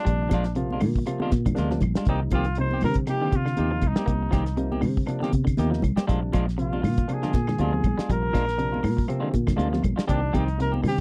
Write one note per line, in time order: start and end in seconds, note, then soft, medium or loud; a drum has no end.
0.00 0.10 G#3 soft
0.00 0.10 D4 soft
0.00 0.54 D4 medium
0.05 0.28 A#1 medium
0.05 0.29 C3 medium
0.05 0.29 F3 medium
0.05 0.27 G3 medium
0.05 0.29 A#3 medium
0.05 0.29 D4 medium
0.05 kick medium
0.05 closed hi-hat medium
0.22 muted clean electric guitar stroke soft
0.29 0.83 A#1 medium
0.29 0.52 F3 medium
0.29 0.46 F3 medium
0.29 0.46 D4 medium
0.29 kick medium
0.29 snare soft
0.29 closed hi-hat medium
0.29 high conga loud
0.29 claves medium
0.34 0.46 G#3 medium
0.34 0.45 F4 medium
0.44 muted clean electric guitar stroke soft
0.44 snare soft
0.44 closed hi-hat soft
0.55 0.78 C3 medium
0.55 0.80 C3 medium
0.55 0.80 F3 medium
0.55 0.80 A#3 medium
0.55 0.80 F4 medium
0.55 closed hi-hat medium
0.70 0.83 G#3 soft
0.70 0.83 D4 soft
0.70 0.82 F4 medium
0.70 high conga medium
0.80 1.03 A#2 medium
0.80 1.03 D3 medium
0.80 muted clean electric guitar stroke soft
0.80 open hi-hat medium
0.80 low conga medium
0.80 claves medium
0.96 muted clean electric guitar stroke soft
0.96 kick medium
1.06 1.30 C3 medium
1.06 1.19 C3 medium
1.06 1.30 F3 medium
1.06 1.30 A#3 medium
1.06 1.30 F4 loud
1.06 muted clean electric guitar stroke soft
1.06 closed hi-hat medium
1.06 claves medium
1.20 1.42 D3 medium
1.20 1.32 F3 medium
1.20 1.32 G#3 medium
1.20 1.32 D4 medium
1.20 1.33 F4 medium
1.20 high conga medium
1.31 1.53 A#2 medium
1.31 kick medium
1.31 snare soft
1.31 closed hi-hat medium
1.31 high conga loud
1.46 1.68 D3 medium
1.46 kick medium
1.46 closed hi-hat soft
1.46 low conga medium
1.46 claves medium
1.55 1.79 D2 medium
1.55 1.79 C3 medium
1.55 1.79 F3 medium
1.55 1.71 F3 medium
1.55 1.72 G#3 medium
1.55 1.79 A#3 medium
1.55 1.79 D4 loud
1.55 snare soft
1.55 closed hi-hat medium
1.55 high conga medium
1.59 1.71 D4 medium
1.59 1.70 F4 medium
1.71 1.93 F3 medium
1.71 muted clean electric guitar stroke soft
1.71 snare soft
1.71 high conga medium
1.81 1.94 A#1 medium
1.81 muted clean electric guitar stroke soft
1.81 kick medium
1.81 closed hi-hat soft
1.81 low conga medium
1.81 claves medium
1.95 2.06 G3 medium
1.95 2.08 G#3 soft
1.95 2.08 D4 soft
1.95 2.08 F4 soft
1.95 muted fingered electric bass stroke soft
1.95 snare medium
1.95 closed hi-hat medium
2.05 2.28 C2 medium
2.05 2.30 C3 medium
2.05 2.22 D#3 medium
2.05 2.30 F3 medium
2.05 2.30 G3 medium
2.05 2.31 A#3 medium
2.05 2.31 D#4 medium
2.05 2.20 D#4 medium
2.05 kick medium
2.05 closed hi-hat medium
2.09 2.22 A#3 medium
2.09 2.22 C4 medium
2.09 2.21 G4 medium
2.23 muted clean electric guitar stroke soft
2.30 2.85 C2 medium
2.30 2.54 F3 medium
2.30 2.56 F4 medium
2.30 kick medium
2.30 closed hi-hat soft
2.30 high conga medium
2.30 claves medium
2.34 2.48 D#3 medium
2.34 2.47 A#3 medium
2.34 2.47 C4 medium
2.34 2.47 G4 medium
2.44 muted clean electric guitar stroke soft
2.44 closed hi-hat soft
2.55 2.80 C3 medium
2.55 2.80 F3 medium
2.55 2.80 A#3 medium
2.55 2.80 D#4 medium
2.55 closed hi-hat medium
2.60 2.82 C5 medium
2.71 2.83 A#3 soft
2.71 2.83 C4 soft
2.71 2.83 G4 medium
2.71 high conga medium
2.81 3.04 C3 medium
2.81 3.05 D3 medium
2.81 open hi-hat medium
2.81 low conga medium
2.81 claves medium
2.85 2.95 A#4 loud
2.94 kick medium
2.94 closed hi-hat medium
2.99 muted clean electric guitar stroke soft
3.07 3.30 C3 medium
3.07 3.19 C3 medium
3.07 3.30 F3 medium
3.07 3.30 A#3 medium
3.07 3.31 D#4 medium
3.07 3.37 G4 medium
3.07 muted clean electric guitar stroke soft
3.07 snare soft
3.07 closed hi-hat medium
3.07 claves medium
3.22 3.43 D3 medium
3.22 3.33 D#3 soft
3.22 3.34 A#3 medium
3.22 3.33 C4 medium
3.22 3.33 G4 medium
3.32 3.53 C3 medium
3.32 3.89 F4 medium
3.32 muted clean electric guitar stroke soft
3.32 kick medium
3.32 closed hi-hat soft
3.32 high conga loud
3.46 3.68 D3 medium
3.46 snare soft
3.46 claves medium
3.56 3.79 D#2 medium
3.56 3.80 C3 medium
3.56 3.72 D#3 medium
3.56 3.80 F3 medium
3.56 3.80 A#3 medium
3.56 3.72 A#3 medium
3.56 3.72 C4 medium
3.56 3.81 D#4 medium
3.56 3.72 G4 medium
3.56 closed hi-hat medium
3.56 high conga medium
3.71 3.93 F3 medium
3.71 muted clean electric guitar stroke soft
3.81 3.94 C2 medium
3.81 muted clean electric guitar stroke soft
3.81 kick medium
3.81 closed hi-hat medium
3.81 high conga medium
3.81 low conga medium
3.81 claves medium
3.87 4.60 D#4 medium
3.96 4.06 G3 medium
3.96 4.12 A#3 soft
3.96 4.12 C4 soft
3.96 4.11 G4 medium
3.96 muted fingered electric bass stroke soft
3.96 snare medium
3.96 closed hi-hat medium
4.06 4.29 C2 medium
4.06 4.31 C3 medium
4.06 4.31 F3 medium
4.06 4.29 A#3 medium
4.06 4.31 A#3 medium
4.06 4.31 D#4 medium
4.06 kick medium
4.06 closed hi-hat medium
4.22 muted clean electric guitar stroke soft
4.31 4.84 C2 medium
4.31 4.47 D#3 medium
4.31 4.53 F3 medium
4.31 4.46 A#3 medium
4.31 4.46 C4 medium
4.31 4.45 G4 medium
4.31 kick medium
4.31 snare soft
4.31 closed hi-hat medium
4.31 high conga loud
4.31 claves medium
4.46 muted clean electric guitar stroke soft
4.46 snare soft
4.46 closed hi-hat medium
4.57 4.80 C3 medium
4.57 4.79 C3 medium
4.57 4.81 F3 medium
4.57 4.80 A#3 medium
4.57 4.81 D#4 medium
4.57 closed hi-hat medium
4.72 4.82 A#3 medium
4.72 4.83 C4 medium
4.72 4.83 G4 medium
4.72 high conga medium
4.81 5.04 C3 medium
4.81 5.04 D3 medium
4.81 open hi-hat medium
4.81 low conga medium
4.81 claves medium
4.97 muted clean electric guitar stroke soft
4.97 kick medium
5.06 5.30 C3 medium
5.06 5.20 C3 medium
5.06 5.31 F3 medium
5.06 5.30 A#3 medium
5.06 5.31 D4 loud
5.06 muted clean electric guitar stroke soft
5.06 closed hi-hat medium
5.06 claves medium
5.20 5.43 D3 medium
5.20 5.33 D#3 medium
5.20 5.33 A#3 medium
5.20 5.33 C4 medium
5.20 5.33 G4 medium
5.20 snare soft
5.20 high conga medium
5.33 5.54 C3 medium
5.33 muted clean electric guitar stroke soft
5.33 kick medium
5.33 closed hi-hat medium
5.33 high conga medium
5.45 5.67 D3 medium
5.45 kick medium
5.45 closed hi-hat medium
5.45 claves medium
5.57 5.79 D#2 medium
5.57 5.81 C3 medium
5.57 5.72 D#3 medium
5.57 5.81 F3 medium
5.57 5.81 A#3 medium
5.57 5.71 A#3 medium
5.57 5.81 D#4 loud
5.57 5.71 G4 medium
5.57 snare soft
5.57 closed hi-hat medium
5.57 high conga loud
5.71 5.93 F3 medium
5.71 muted clean electric guitar stroke soft
5.71 snare soft
5.82 5.95 C2 medium
5.82 muted clean electric guitar stroke soft
5.82 kick medium
5.82 closed hi-hat medium
5.82 low conga medium
5.82 claves medium
5.96 6.06 G3 medium
5.96 6.08 A#3 soft
5.96 6.07 C4 medium
5.96 6.08 G4 medium
5.96 muted fingered electric bass stroke soft
5.96 snare medium
5.96 closed hi-hat medium
5.96 low conga medium
6.07 6.30 A#1 medium
6.07 6.32 C3 medium
6.07 6.22 F3 medium
6.07 6.32 F3 medium
6.07 6.30 G3 medium
6.07 6.22 G#3 medium
6.07 6.32 A#3 medium
6.07 6.22 D4 medium
6.07 6.32 D4 medium
6.07 6.21 F4 medium
6.07 kick medium
6.07 closed hi-hat medium
6.22 muted clean electric guitar stroke soft
6.33 6.85 A#1 medium
6.33 6.47 F3 medium
6.33 6.55 F3 medium
6.33 6.47 G#3 loud
6.33 6.47 D4 loud
6.33 6.47 F4 medium
6.33 kick medium
6.33 closed hi-hat soft
6.33 high conga medium
6.33 claves medium
6.48 muted clean electric guitar stroke soft
6.48 snare soft
6.48 closed hi-hat soft
6.58 6.80 C3 medium
6.58 6.81 C3 medium
6.58 6.81 F3 medium
6.58 6.81 A#3 medium
6.58 6.82 F4 medium
6.58 7.15 F4 medium
6.58 closed hi-hat medium
6.73 6.83 G#3 soft
6.73 6.82 D4 soft
6.73 6.82 F4 medium
6.73 high conga medium
6.83 7.04 A#2 medium
6.83 7.05 D3 medium
6.83 open hi-hat medium
6.83 low conga medium
6.83 claves medium
6.97 muted clean electric guitar stroke soft
6.97 kick medium
6.97 closed hi-hat medium
7.08 7.31 C3 medium
7.08 7.21 C3 medium
7.08 7.31 F3 medium
7.08 7.31 A#3 medium
7.08 7.31 D4 medium
7.08 muted clean electric guitar stroke soft
7.08 closed hi-hat medium
7.08 claves medium
7.13 7.61 G#4 medium
7.22 7.45 D3 medium
7.22 7.34 F3 medium
7.22 7.34 G#3 medium
7.22 7.34 D4 medium
7.22 7.34 F4 medium
7.22 snare soft
7.22 high conga medium
7.33 7.55 A#2 medium
7.33 kick medium
7.33 snare soft
7.33 closed hi-hat soft
7.33 high conga medium
7.47 7.70 D3 medium
7.47 snare soft
7.47 low conga medium
7.47 claves medium
7.58 7.80 D2 medium
7.58 7.81 C3 medium
7.58 7.81 F3 medium
7.58 7.73 F3 medium
7.58 7.73 G#3 medium
7.58 7.82 A#3 medium
7.58 7.74 D4 medium
7.58 7.82 F4 medium
7.58 7.73 F4 medium
7.58 closed hi-hat medium
7.58 high conga medium
7.63 8.07 G#4 medium
7.73 7.95 F3 medium
7.73 muted clean electric guitar stroke soft
7.73 high conga medium
7.84 7.95 A#1 medium
7.84 muted clean electric guitar stroke soft
7.84 kick medium
7.84 closed hi-hat soft
7.84 high conga medium
7.84 low conga medium
7.84 claves medium
7.98 8.07 G3 medium
7.98 8.13 G#3 soft
7.98 8.12 D4 soft
7.98 8.12 F4 medium
7.98 snare medium
7.98 closed hi-hat soft
8.09 8.30 A#1 medium
8.09 8.32 C3 medium
8.09 8.32 F3 medium
8.09 8.31 G3 medium
8.09 8.32 A#3 medium
8.09 8.32 F4 medium
8.09 9.07 A#4 loud
8.09 kick medium
8.09 closed hi-hat medium
8.23 muted clean electric guitar stroke soft
8.33 8.86 A#1 medium
8.33 8.47 F3 medium
8.33 8.55 F3 medium
8.33 8.47 G#3 medium
8.33 8.46 D4 medium
8.33 8.46 F4 medium
8.33 kick medium
8.33 snare soft
8.33 closed hi-hat soft
8.33 high conga medium
8.33 claves medium
8.48 muted clean electric guitar stroke soft
8.48 snare soft
8.48 closed hi-hat soft
8.58 8.81 C3 medium
8.58 8.80 C3 medium
8.58 8.81 F3 medium
8.58 8.82 A#3 medium
8.58 8.81 D4 medium
8.58 closed hi-hat medium
8.72 8.82 G#3 medium
8.72 8.82 F4 medium
8.72 muted clean electric guitar stroke medium
8.72 high conga medium
8.83 9.05 A#2 medium
8.83 muted clean electric guitar stroke soft
8.83 open hi-hat medium
8.83 low conga medium
8.83 claves medium
8.97 muted clean electric guitar stroke soft
8.97 kick medium
9.08 9.31 C3 loud
9.08 9.21 C3 medium
9.08 9.32 F3 medium
9.08 9.32 A#3 medium
9.08 9.32 C4 loud
9.08 muted clean electric guitar stroke soft
9.08 closed hi-hat medium
9.08 claves medium
9.20 9.44 D3 medium
9.20 9.30 F3 medium
9.20 9.30 G#3 medium
9.20 9.30 D4 medium
9.20 9.31 F4 medium
9.34 9.55 A#2 medium
9.34 kick medium
9.34 closed hi-hat medium
9.34 high conga medium
9.47 9.69 D3 medium
9.47 kick medium
9.47 snare soft
9.47 closed hi-hat medium
9.47 low conga medium
9.47 claves medium
9.56 9.80 D2 medium
9.56 9.81 C3 medium
9.56 9.72 F3 medium
9.56 9.81 F3 medium
9.56 9.70 G#3 medium
9.56 9.81 A#3 medium
9.56 9.70 D4 medium
9.56 9.81 F4 loud
9.56 9.69 F4 medium
9.56 closed hi-hat medium
9.56 high conga medium
9.70 9.95 F3 medium
9.70 muted clean electric guitar stroke soft
9.70 snare soft
9.70 high conga medium
9.82 9.96 A#1 medium
9.82 muted clean electric guitar stroke soft
9.82 kick medium
9.82 closed hi-hat medium
9.82 high conga medium
9.82 low conga medium
9.82 claves medium
9.96 10.07 G3 medium
9.96 10.08 G#3 soft
9.96 10.07 D4 medium
9.96 10.07 F4 medium
9.96 snare medium
9.96 closed hi-hat medium
10.07 10.30 C2 medium
10.07 10.31 C3 medium
10.07 10.22 D#3 medium
10.07 10.31 F3 medium
10.07 10.30 G3 medium
10.07 10.31 A#3 medium
10.07 10.22 A#3 medium
10.07 10.22 C4 medium
10.07 10.37 D4 medium
10.07 10.31 D#4 medium
10.07 10.22 G4 medium
10.07 kick medium
10.07 closed hi-hat medium
10.23 muted clean electric guitar stroke soft
10.33 10.85 C2 medium
10.33 10.48 D#3 medium
10.33 10.55 F3 medium
10.33 10.46 A#3 medium
10.33 10.48 C4 medium
10.33 10.60 D#4 medium
10.33 10.45 G4 medium
10.33 kick medium
10.33 closed hi-hat soft
10.33 high conga medium
10.33 claves medium
10.46 muted clean electric guitar stroke soft
10.46 closed hi-hat soft
10.58 10.81 C3 medium
10.58 10.82 F3 medium
10.58 10.82 A#3 medium
10.58 10.82 D#4 medium
10.58 10.72 A#4 medium
10.58 closed hi-hat medium
10.72 10.82 A#3 soft
10.72 10.83 C4 soft
10.72 10.82 G4 soft
10.72 high conga medium
10.83 11.01 C3 medium
10.83 11.01 D3 medium
10.83 muted clean electric guitar stroke soft
10.83 open hi-hat medium
10.83 low conga medium
10.83 claves medium
10.88 10.98 G4 medium
10.96 muted clean electric guitar stroke soft